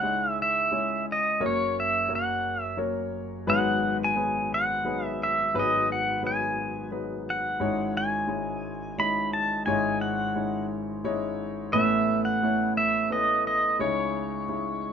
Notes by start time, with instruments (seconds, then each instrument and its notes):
Already playing: grand piano C#2 C#3 G#3 C#4 E4 C#5, pedal steel guitar F#5
0.03 grand piano G#3 C#4 D#4 E4 C#5
0.42 pedal steel guitar E5
0.71 grand piano G#3 C#4 E4 C#5
1.12 pedal steel guitar D#5
1.40 grand piano F#1 F#2 F#3 A#3 C#4 A#4 C#5
1.46 pedal steel guitar C#5
1.80 pedal steel guitar E5
2.09 grand piano F#3 A#3 C#4 A#4 C#5
2.15 pedal steel guitar F#5
2.62 pedal steel guitar E5
2.77 grand piano F#3 A#3 C#4 A#4 C#5
3.47 grand piano G#1 G#2 F#3 B3 D#4 G#4 B4, pedal steel guitar F#5
4.04 pedal steel guitar G#5
4.16 grand piano F#3 B3 D#4 G#4 B4
4.54 pedal steel guitar F#5
4.85 grand piano F#3 B3 D#4 G#4 B4
5.06 pedal steel guitar E5
5.23 pedal steel guitar E5
5.54 grand piano G#1 G#2 F#3 B3 D#4 G#4 B4
5.59 pedal steel guitar D#5
5.92 pedal steel guitar F#5
6.23 grand piano F#3 B3 D#4 G#4 B4, pedal steel guitar G#5
6.91 grand piano F#3 B3 D#4 G#4 B4
7.30 pedal steel guitar F#5
7.60 grand piano G#1 G#2 G#3 C#4 D#4 E4 C#5
7.97 pedal steel guitar G#5
8.28 grand piano G#3 C#4 D#4 E4 C#5
8.98 grand piano G#3 C#4 D#4 E4 D#5, pedal steel guitar B5
9.33 pedal steel guitar A5
9.66 grand piano G#1 G#2 G#3 C#4 D#4 E4 C#5, pedal steel guitar G#5
10.01 pedal steel guitar F#5
10.35 grand piano G#3 C#4 D#4 E4 C#5
11.04 grand piano G#3 C#4 D#4 E4 C#5
11.73 grand piano A1 A2 A3 B3 C#4 E4 B4, pedal steel guitar E5
12.25 pedal steel guitar F#5
12.43 grand piano A3 B3 C#4 E4 C#5
12.77 pedal steel guitar E5
13.10 grand piano A3 B3 C#4 E4 B4, pedal steel guitar D#5
13.47 pedal steel guitar D#5
13.79 grand piano C#2 C#3 G#3 C#4 D#4 E4 C#5, pedal steel guitar C#5
14.49 grand piano G#3 C#4 D#4 E4 C#5